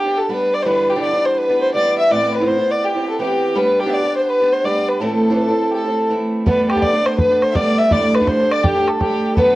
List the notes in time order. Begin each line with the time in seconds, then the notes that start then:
Already playing: G4
0.04 B3 D4 G4
0.17 A4
0.29 G3 B3 D4 G4 B4
0.54 D5
0.62 G2 D3 E3 G3 B4 C5
0.67 B3 D4
0.90 G4
0.95 G2 D3 E3 G3 B3 D4
1.02 D5
1.13 E3 G3 B3 D4
1.25 C5
1.38 B4
1.48 E3 G3 B3 D4
1.62 C5
1.74 E3 G3 B3 D4 D5
1.98 E5
2.10 A2 E3 B3 C4 E4 D5
2.34 B4
2.40 A2 E3 B3 C4 E4
2.47 C5
2.58 B3 C4 E4
2.70 D5
2.83 G4
2.94 B3 C4 E4
3.08 A4
3.19 E3 B3 C4 E4 G4
3.55 G3 B3 D4 G4 B4
3.79 G4
3.85 G3 B3 D4 G4 E5
3.93 D5
4.03 B3 D4 G4
4.16 C5
4.25 B4 C5
4.40 B3 D4 G4
4.52 C5
4.64 G3 B3 D4 G4 D5
4.88 B4
5.00 A2 E3 A3 C4 E4 A4
5.30 A2 E3 A3 C4 E4
5.34 A4 B4
5.48 A3 C4 E4
5.71 G4 A4
5.84 A3 C4 E4
6.09 E3 A3 C4 E4
6.46 G3 A3 B3 D4 B4, bodhran
6.70 G4, bodhran
6.75 G3 A3 B3 D4, bodhran
6.82 D5, bodhran
6.93 A3 B3 D4
7.06 C5, bodhran
7.18 B4, bodhran
7.30 A3 B3 D4
7.36 B4
7.42 C5, bodhran
7.50 E5
7.54 G3 A3 B3 D4 D5, bodhran
7.79 E5
7.91 D2 A2 D3 G3 A3 D4 D5, bodhran
8.15 B4, bodhran
8.21 D2 A2 D3 G3 A3 D4, bodhran
8.27 C5, bodhran
8.39 D3 G3 A3 D4
8.51 D5, bodhran
8.63 G4, bodhran
8.75 D3 G3 A3 D4
8.88 A4, bodhran
8.95 A4
9.00 D3 G3 A3 D4 G4, bodhran
9.34 B2 F#3 A4 B4, bodhran
9.38 A3 B3 D4